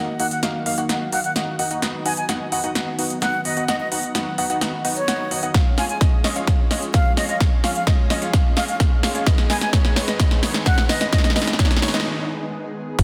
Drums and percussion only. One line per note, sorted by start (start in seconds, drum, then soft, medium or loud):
0.20 open hi-hat loud
0.31 closed hi-hat medium
0.43 snare medium
0.43 closed hi-hat medium
0.66 open hi-hat medium
0.78 closed hi-hat medium
0.89 snare medium
0.89 closed hi-hat medium
1.12 open hi-hat loud
1.24 closed hi-hat medium
1.36 snare medium
1.36 closed hi-hat medium
1.59 open hi-hat loud
1.71 closed hi-hat medium
1.82 snare medium
1.82 closed hi-hat medium
2.06 open hi-hat loud
2.17 closed hi-hat medium
2.29 snare medium
2.29 closed hi-hat medium
2.52 open hi-hat loud
2.64 closed hi-hat soft
2.75 snare medium
2.75 closed hi-hat medium
2.99 open hi-hat loud
3.10 closed hi-hat soft
3.22 snare medium
3.22 closed hi-hat medium
3.45 open hi-hat loud
3.57 closed hi-hat soft
3.68 snare medium
3.68 closed hi-hat medium
3.92 open hi-hat loud
4.03 closed hi-hat soft
4.15 snare medium
4.15 closed hi-hat medium
4.38 open hi-hat loud
4.50 closed hi-hat soft
4.61 snare medium
4.61 closed hi-hat medium
4.85 open hi-hat loud
4.96 closed hi-hat soft
5.08 snare medium
5.08 closed hi-hat medium
5.31 open hi-hat medium
5.43 closed hi-hat medium
5.54 kick loud
5.54 snare medium
5.54 closed hi-hat medium
5.78 snare medium
5.78 open hi-hat loud
5.89 closed hi-hat soft
6.01 kick loud
6.01 snare medium
6.01 closed hi-hat medium
6.24 snare medium
6.24 open hi-hat loud
6.36 closed hi-hat soft
6.47 kick loud
6.47 snare medium
6.47 closed hi-hat medium
6.71 snare medium
6.71 open hi-hat loud
6.82 closed hi-hat soft
6.94 kick loud
6.94 snare medium
6.94 closed hi-hat medium
7.17 snare medium
7.17 open hi-hat loud
7.29 closed hi-hat soft
7.41 kick loud
7.41 snare medium
7.41 closed hi-hat medium
7.64 snare medium
7.64 open hi-hat loud
7.75 closed hi-hat medium
7.87 kick loud
7.87 snare medium
7.87 closed hi-hat medium
8.10 snare medium
8.10 open hi-hat loud
8.22 closed hi-hat medium
8.33 kick loud
8.33 snare medium
8.33 closed hi-hat medium
8.57 snare medium
8.57 open hi-hat loud
8.68 closed hi-hat soft
8.80 kick loud
8.80 snare medium
8.80 closed hi-hat medium
9.03 snare loud
9.03 open hi-hat medium
9.15 closed hi-hat medium
9.27 kick loud
9.27 snare loud
9.27 closed hi-hat medium
9.38 snare medium
9.50 snare medium
9.50 open hi-hat loud
9.61 snare medium
9.61 closed hi-hat medium
9.73 kick loud
9.73 snare loud
9.73 closed hi-hat medium
9.85 snare medium
9.96 snare loud
9.96 open hi-hat medium
10.08 snare medium
10.08 closed hi-hat medium
10.20 kick loud
10.20 snare loud
10.20 closed hi-hat medium
10.31 snare medium
10.43 snare loud
10.43 open hi-hat loud
10.54 snare medium
10.54 closed hi-hat medium
10.66 kick loud
10.66 snare loud
10.66 closed hi-hat medium
10.78 snare medium
10.89 snare loud
10.89 open hi-hat medium
11.01 snare medium
11.01 closed hi-hat medium
11.13 kick loud
11.13 snare loud
11.13 closed hi-hat medium
11.18 snare medium
11.24 snare medium
11.24 closed hi-hat soft
11.30 snare medium
11.36 snare loud
11.36 open hi-hat loud
11.42 snare medium
11.47 snare medium
11.47 closed hi-hat medium
11.53 snare medium
11.59 kick loud
11.59 snare loud
11.59 closed hi-hat medium
11.65 snare loud
11.71 snare medium
11.71 closed hi-hat soft
11.77 snare medium
11.82 snare loud
11.82 open hi-hat medium
11.88 snare loud
11.94 snare medium
11.94 closed hi-hat medium
12.00 snare medium
12.99 kick loud
12.99 closed hi-hat medium
12.99 crash loud